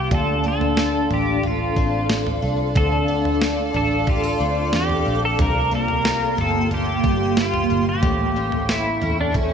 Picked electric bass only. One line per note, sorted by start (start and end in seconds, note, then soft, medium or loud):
0.12 1.07 D2 medium
1.11 1.73 A1 medium
1.77 2.39 A1 medium
2.43 2.74 C2 medium
2.76 3.70 D2 medium
3.74 4.37 A1 medium
4.41 4.72 D2 medium
4.74 5.05 E2 medium
5.07 5.38 A#1 medium
5.39 6.34 C2 medium
6.38 7.01 G1 medium
7.04 7.67 G1 medium
7.71 8.02 G1 medium
8.03 8.98 A1 medium
9.03 9.53 E2 medium